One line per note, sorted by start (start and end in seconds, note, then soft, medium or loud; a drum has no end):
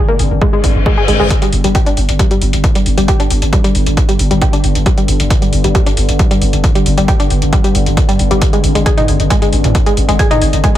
0.00 1.29 G2 medium
0.00 1.29 D3 medium
0.09 0.13 A#3 medium
0.19 0.30 G#1 loud
0.19 open hi-hat medium
0.31 0.41 G#1 medium
0.41 0.44 G#3 medium
0.41 kick loud
0.41 reverse cymbal medium
0.53 0.57 G#3 medium
0.64 0.75 G#1 loud
0.64 kick medium
0.64 open hi-hat loud
0.75 0.86 G#1 medium
0.86 0.90 G#3 medium
0.86 kick loud
0.98 1.04 G#4 medium
1.08 1.19 G#1 loud
1.08 1.13 G#3 medium
1.08 open hi-hat medium
1.20 1.30 G#1 medium
1.20 1.22 G#3 loud
1.30 10.78 G2 medium
1.30 10.78 D3 medium
1.30 kick loud
1.30 closed hi-hat medium
1.42 1.44 G3 medium
1.42 closed hi-hat medium
1.53 1.64 G1 loud
1.53 open hi-hat loud
1.64 1.75 G1 medium
1.64 1.67 G3 medium
1.64 closed hi-hat medium
1.75 1.82 G4 medium
1.75 kick loud
1.75 closed hi-hat medium
1.86 1.91 D4 medium
1.86 closed hi-hat medium
1.97 2.08 G1 loud
1.97 open hi-hat medium
2.09 2.19 G1 medium
2.09 closed hi-hat medium
2.19 2.22 G3 medium
2.19 kick loud
2.19 closed hi-hat medium
2.31 2.35 G3 medium
2.31 closed hi-hat medium
2.42 2.52 G1 loud
2.42 open hi-hat loud
2.53 2.64 G1 medium
2.53 closed hi-hat medium
2.64 kick loud
2.64 closed hi-hat medium
2.75 2.78 G3 medium
2.75 closed hi-hat medium
2.86 2.97 G1 loud
2.86 open hi-hat medium
2.98 3.08 G1 medium
2.98 3.00 G3 medium
2.98 closed hi-hat medium
3.08 3.15 G4 medium
3.08 kick loud
3.08 closed hi-hat medium
3.20 3.24 D4 medium
3.20 closed hi-hat soft
3.30 3.41 G1 loud
3.30 open hi-hat loud
3.42 3.52 G1 medium
3.42 closed hi-hat medium
3.53 3.55 G3 medium
3.53 kick loud
3.53 closed hi-hat medium
3.64 3.68 G3 medium
3.64 closed hi-hat medium
3.75 3.86 G1 loud
3.75 open hi-hat medium
3.86 3.97 G1 medium
3.86 closed hi-hat medium
3.97 kick loud
3.97 closed hi-hat medium
4.09 4.11 G3 medium
4.09 closed hi-hat medium
4.19 4.30 G1 loud
4.19 open hi-hat loud
4.31 4.41 G1 medium
4.31 4.33 G3 medium
4.31 closed hi-hat medium
4.42 4.48 G4 medium
4.42 kick loud
4.42 closed hi-hat medium
4.53 4.57 D4 medium
4.53 closed hi-hat medium
4.64 4.75 G1 loud
4.64 open hi-hat loud
4.75 4.86 G1 medium
4.75 closed hi-hat medium
4.86 4.89 G3 medium
4.86 kick loud
4.86 closed hi-hat medium
4.98 5.02 G3 medium
4.98 closed hi-hat medium
5.08 5.19 G1 loud
5.08 open hi-hat loud
5.20 5.30 G1 medium
5.20 closed hi-hat medium
5.30 kick loud
5.30 closed hi-hat medium
5.42 5.44 G3 medium
5.42 closed hi-hat medium
5.53 5.64 G1 loud
5.53 open hi-hat medium
5.64 5.75 G1 medium
5.64 5.67 G3 medium
5.64 closed hi-hat medium
5.75 5.82 G4 medium
5.75 kick loud
5.75 closed hi-hat medium
5.86 5.91 D4 medium
5.86 closed hi-hat medium
5.97 6.08 G1 loud
5.97 open hi-hat loud
6.09 6.19 G1 medium
6.09 closed hi-hat medium
6.19 6.22 G3 medium
6.19 kick loud
6.19 closed hi-hat medium
6.31 6.35 G3 medium
6.31 closed hi-hat medium
6.41 6.52 G1 loud
6.41 open hi-hat medium
6.53 6.63 G1 medium
6.53 closed hi-hat soft
6.64 kick loud
6.64 closed hi-hat medium
6.75 6.78 G3 medium
6.75 closed hi-hat soft
6.86 6.97 G1 loud
6.86 open hi-hat loud
6.97 7.08 G1 medium
6.97 7.00 G3 medium
6.97 closed hi-hat soft
7.08 7.15 G4 medium
7.08 kick loud
7.08 closed hi-hat medium
7.20 7.24 D4 medium
7.20 closed hi-hat soft
7.30 7.41 G1 loud
7.30 open hi-hat medium
7.42 7.52 G1 medium
7.42 closed hi-hat medium
7.53 7.55 G3 medium
7.53 kick loud
7.53 closed hi-hat medium
7.64 7.68 G3 medium
7.64 closed hi-hat medium
7.75 7.86 G1 loud
7.75 open hi-hat loud
7.86 7.97 G1 medium
7.86 closed hi-hat soft
7.97 kick loud
7.97 closed hi-hat medium
8.09 8.11 G3 medium
8.09 closed hi-hat medium
8.19 8.30 G1 loud
8.19 open hi-hat medium
8.31 8.41 G1 medium
8.31 8.33 G3 medium
8.31 closed hi-hat soft
8.42 kick loud
8.42 closed hi-hat medium
8.53 8.56 G#3 medium
8.53 closed hi-hat soft
8.64 8.75 G#1 loud
8.64 open hi-hat loud
8.75 8.86 G#1 medium
8.75 8.78 G#3 medium
8.75 closed hi-hat medium
8.86 8.93 G#4 medium
8.86 kick loud
8.86 closed hi-hat medium
8.98 9.02 D#4 medium
8.98 closed hi-hat soft
8.98 mid tom medium
9.08 9.19 G#1 loud
9.08 open hi-hat medium
9.20 9.30 G#1 medium
9.20 closed hi-hat soft
9.30 9.33 G#3 medium
9.30 kick loud
9.30 closed hi-hat medium
9.42 9.46 G#3 medium
9.42 closed hi-hat medium
9.53 9.64 G#1 loud
9.53 open hi-hat loud
9.64 9.75 G#1 medium
9.64 closed hi-hat medium
9.64 mid tom loud
9.75 kick loud
9.75 closed hi-hat medium
9.86 9.89 G#3 medium
9.86 closed hi-hat medium
9.97 10.08 G#1 loud
9.97 open hi-hat medium
10.09 10.19 G#1 medium
10.09 10.11 G#3 medium
10.09 closed hi-hat soft
10.19 10.26 G#4 medium
10.19 kick loud
10.19 closed hi-hat medium
10.31 10.35 D#4 medium
10.31 closed hi-hat soft
10.31 mid tom medium
10.41 10.52 G#1 medium
10.41 open hi-hat loud
10.53 10.64 G#1 medium
10.53 closed hi-hat soft
10.64 10.66 G#3 medium
10.64 kick loud
10.64 closed hi-hat medium